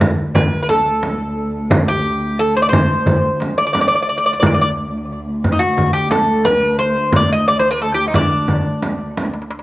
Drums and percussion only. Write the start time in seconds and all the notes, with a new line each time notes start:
0.00 darbuka dum, frame drum
0.35 darbuka dum, frame drum
0.69 darbuka tek, frame drum
1.03 darbuka tek, frame drum
1.36 darbuka ka
1.53 darbuka ka
1.70 darbuka dum, frame drum
2.05 darbuka ka
2.22 darbuka ka
2.73 darbuka dum, frame drum
3.06 darbuka dum, frame drum
3.40 darbuka tek, frame drum
3.75 darbuka tek, frame drum
4.08 darbuka ka
4.42 darbuka dum, frame drum
4.76 darbuka ka
4.94 darbuka ka
5.44 frame drum
5.78 darbuka dum, frame drum
6.11 darbuka tek, frame drum
6.45 darbuka tek, frame drum
6.97 darbuka ka
7.12 frame drum, darbuka dum
7.47 darbuka ka
7.82 darbuka ka
8.14 frame drum, darbuka dum
8.32 darbuka ka
8.48 frame drum, darbuka dum
8.82 darbuka tek, frame drum
9.17 darbuka tek, frame drum
9.25 darbuka ka
9.33 darbuka tek
9.42 darbuka ka
9.51 darbuka tek
9.59 darbuka ka